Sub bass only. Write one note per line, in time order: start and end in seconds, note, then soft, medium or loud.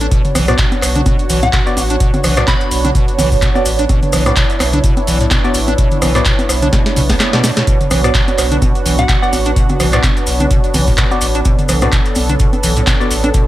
0.35 0.55 B1 loud
0.82 1.03 B1 medium
1.29 1.50 B1 loud
1.77 1.97 A1 medium
2.24 2.44 B1 loud
2.71 2.92 B1 medium
3.19 3.39 B1 loud
3.66 3.86 A1 medium
4.13 4.33 B1 loud
4.60 4.81 B1 medium
5.08 5.28 B1 loud
5.55 5.75 A1 medium
6.02 6.22 B1 loud
6.49 6.70 B1 medium
6.97 7.17 B1 loud
7.91 8.11 B1 loud
8.38 8.59 B1 medium
8.85 9.06 B1 loud
9.33 9.53 A1 medium
9.80 10.00 B1 loud
10.27 10.48 B1 medium
10.74 10.95 B1 loud
11.22 11.42 A1 medium
11.69 11.89 B1 loud
12.16 12.36 B1 medium
12.63 12.84 B1 loud
13.11 13.31 A1 medium